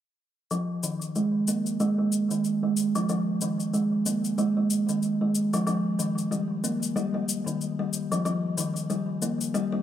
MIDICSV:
0, 0, Header, 1, 3, 480
1, 0, Start_track
1, 0, Key_signature, -4, "minor"
1, 0, Tempo, 645161
1, 379, Time_signature, 4, 2, 24, 8
1, 7310, End_track
2, 0, Start_track
2, 0, Title_t, "Kalimba"
2, 0, Program_c, 0, 108
2, 378, Note_on_c, 0, 53, 84
2, 457, Note_off_c, 0, 53, 0
2, 619, Note_on_c, 0, 51, 63
2, 750, Note_off_c, 0, 51, 0
2, 861, Note_on_c, 0, 56, 68
2, 991, Note_off_c, 0, 56, 0
2, 1101, Note_on_c, 0, 58, 60
2, 1178, Note_off_c, 0, 58, 0
2, 1340, Note_on_c, 0, 56, 88
2, 1418, Note_off_c, 0, 56, 0
2, 1475, Note_on_c, 0, 56, 68
2, 1573, Note_off_c, 0, 56, 0
2, 1718, Note_on_c, 0, 51, 65
2, 1943, Note_off_c, 0, 51, 0
2, 1957, Note_on_c, 0, 56, 69
2, 2183, Note_off_c, 0, 56, 0
2, 2197, Note_on_c, 0, 53, 91
2, 2294, Note_off_c, 0, 53, 0
2, 2302, Note_on_c, 0, 53, 86
2, 2379, Note_off_c, 0, 53, 0
2, 2542, Note_on_c, 0, 51, 60
2, 2671, Note_off_c, 0, 51, 0
2, 2779, Note_on_c, 0, 56, 69
2, 2910, Note_off_c, 0, 56, 0
2, 3020, Note_on_c, 0, 58, 63
2, 3098, Note_off_c, 0, 58, 0
2, 3260, Note_on_c, 0, 56, 90
2, 3338, Note_off_c, 0, 56, 0
2, 3399, Note_on_c, 0, 56, 67
2, 3495, Note_off_c, 0, 56, 0
2, 3638, Note_on_c, 0, 51, 65
2, 3864, Note_off_c, 0, 51, 0
2, 3878, Note_on_c, 0, 56, 68
2, 4103, Note_off_c, 0, 56, 0
2, 4118, Note_on_c, 0, 53, 89
2, 4207, Note_off_c, 0, 53, 0
2, 4216, Note_on_c, 0, 53, 92
2, 4296, Note_off_c, 0, 53, 0
2, 4456, Note_on_c, 0, 51, 67
2, 4589, Note_off_c, 0, 51, 0
2, 4695, Note_on_c, 0, 55, 73
2, 4828, Note_off_c, 0, 55, 0
2, 4938, Note_on_c, 0, 58, 66
2, 5017, Note_off_c, 0, 58, 0
2, 5177, Note_on_c, 0, 55, 90
2, 5257, Note_off_c, 0, 55, 0
2, 5314, Note_on_c, 0, 55, 66
2, 5412, Note_off_c, 0, 55, 0
2, 5555, Note_on_c, 0, 51, 67
2, 5782, Note_off_c, 0, 51, 0
2, 5798, Note_on_c, 0, 55, 68
2, 6023, Note_off_c, 0, 55, 0
2, 6038, Note_on_c, 0, 53, 90
2, 6131, Note_off_c, 0, 53, 0
2, 6140, Note_on_c, 0, 53, 87
2, 6218, Note_off_c, 0, 53, 0
2, 6380, Note_on_c, 0, 51, 71
2, 6510, Note_off_c, 0, 51, 0
2, 6620, Note_on_c, 0, 55, 70
2, 6750, Note_off_c, 0, 55, 0
2, 6860, Note_on_c, 0, 58, 68
2, 6938, Note_off_c, 0, 58, 0
2, 7099, Note_on_c, 0, 55, 93
2, 7178, Note_off_c, 0, 55, 0
2, 7235, Note_on_c, 0, 55, 72
2, 7310, Note_off_c, 0, 55, 0
2, 7310, End_track
3, 0, Start_track
3, 0, Title_t, "Drums"
3, 379, Note_on_c, 9, 69, 28
3, 454, Note_off_c, 9, 69, 0
3, 620, Note_on_c, 9, 69, 66
3, 694, Note_off_c, 9, 69, 0
3, 756, Note_on_c, 9, 69, 38
3, 831, Note_off_c, 9, 69, 0
3, 859, Note_on_c, 9, 69, 28
3, 934, Note_off_c, 9, 69, 0
3, 1098, Note_on_c, 9, 69, 64
3, 1172, Note_off_c, 9, 69, 0
3, 1237, Note_on_c, 9, 69, 41
3, 1312, Note_off_c, 9, 69, 0
3, 1339, Note_on_c, 9, 69, 27
3, 1413, Note_off_c, 9, 69, 0
3, 1578, Note_on_c, 9, 69, 66
3, 1653, Note_off_c, 9, 69, 0
3, 1717, Note_on_c, 9, 69, 41
3, 1792, Note_off_c, 9, 69, 0
3, 1818, Note_on_c, 9, 69, 29
3, 1893, Note_off_c, 9, 69, 0
3, 2059, Note_on_c, 9, 69, 57
3, 2133, Note_off_c, 9, 69, 0
3, 2197, Note_on_c, 9, 69, 40
3, 2272, Note_off_c, 9, 69, 0
3, 2299, Note_on_c, 9, 69, 32
3, 2374, Note_off_c, 9, 69, 0
3, 2539, Note_on_c, 9, 69, 67
3, 2613, Note_off_c, 9, 69, 0
3, 2678, Note_on_c, 9, 69, 36
3, 2752, Note_off_c, 9, 69, 0
3, 2780, Note_on_c, 9, 69, 30
3, 2855, Note_off_c, 9, 69, 0
3, 3020, Note_on_c, 9, 69, 67
3, 3095, Note_off_c, 9, 69, 0
3, 3159, Note_on_c, 9, 69, 42
3, 3233, Note_off_c, 9, 69, 0
3, 3260, Note_on_c, 9, 69, 30
3, 3334, Note_off_c, 9, 69, 0
3, 3499, Note_on_c, 9, 69, 68
3, 3573, Note_off_c, 9, 69, 0
3, 3637, Note_on_c, 9, 69, 43
3, 3711, Note_off_c, 9, 69, 0
3, 3739, Note_on_c, 9, 69, 30
3, 3813, Note_off_c, 9, 69, 0
3, 3980, Note_on_c, 9, 69, 65
3, 4054, Note_off_c, 9, 69, 0
3, 4118, Note_on_c, 9, 69, 40
3, 4192, Note_off_c, 9, 69, 0
3, 4219, Note_on_c, 9, 69, 31
3, 4293, Note_off_c, 9, 69, 0
3, 4460, Note_on_c, 9, 69, 68
3, 4535, Note_off_c, 9, 69, 0
3, 4600, Note_on_c, 9, 69, 41
3, 4674, Note_off_c, 9, 69, 0
3, 4702, Note_on_c, 9, 69, 30
3, 4777, Note_off_c, 9, 69, 0
3, 4942, Note_on_c, 9, 69, 65
3, 5016, Note_off_c, 9, 69, 0
3, 5079, Note_on_c, 9, 69, 45
3, 5153, Note_off_c, 9, 69, 0
3, 5183, Note_on_c, 9, 69, 28
3, 5257, Note_off_c, 9, 69, 0
3, 5422, Note_on_c, 9, 69, 76
3, 5496, Note_off_c, 9, 69, 0
3, 5561, Note_on_c, 9, 69, 43
3, 5635, Note_off_c, 9, 69, 0
3, 5663, Note_on_c, 9, 69, 32
3, 5737, Note_off_c, 9, 69, 0
3, 5901, Note_on_c, 9, 69, 66
3, 5976, Note_off_c, 9, 69, 0
3, 6041, Note_on_c, 9, 69, 46
3, 6115, Note_off_c, 9, 69, 0
3, 6143, Note_on_c, 9, 69, 29
3, 6217, Note_off_c, 9, 69, 0
3, 6382, Note_on_c, 9, 69, 75
3, 6456, Note_off_c, 9, 69, 0
3, 6520, Note_on_c, 9, 69, 41
3, 6594, Note_off_c, 9, 69, 0
3, 6621, Note_on_c, 9, 69, 30
3, 6696, Note_off_c, 9, 69, 0
3, 6860, Note_on_c, 9, 69, 68
3, 6935, Note_off_c, 9, 69, 0
3, 7000, Note_on_c, 9, 69, 44
3, 7074, Note_off_c, 9, 69, 0
3, 7102, Note_on_c, 9, 69, 30
3, 7176, Note_off_c, 9, 69, 0
3, 7310, End_track
0, 0, End_of_file